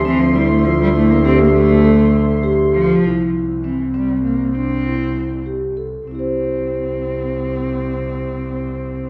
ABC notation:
X:1
M:5/8
L:1/16
Q:1/4=99
K:C
V:1 name="Woodwind section"
[F,ec']8- [F,ec']2- | [F,ec']8- [F,ec']2 | z8 z2 | z8 z2 |
z8 z2 | z8 z2 |]
V:2 name="Vibraphone"
C2 E2 F2 E2 G2- | G2 A4 G4 | E4 C2 C4 | D2 E4 G2 A2 |
[CEGc]8- [CEGc]2- | [CEGc]8- [CEGc]2 |]
V:3 name="Cello"
E, F, G, A, F, G, A, _B, C B, | A,6 z2 F,2- | F,2 z2 E,2 G,2 _B,2 | C6 z4 |
C8- C2- | C8- C2 |]
V:4 name="Double bass" clef=bass
D,,8- D,,2- | D,,8- D,,2 | C,,8- C,,2- | C,,8- C,,2 |
C,,8- C,,2- | C,,8- C,,2 |]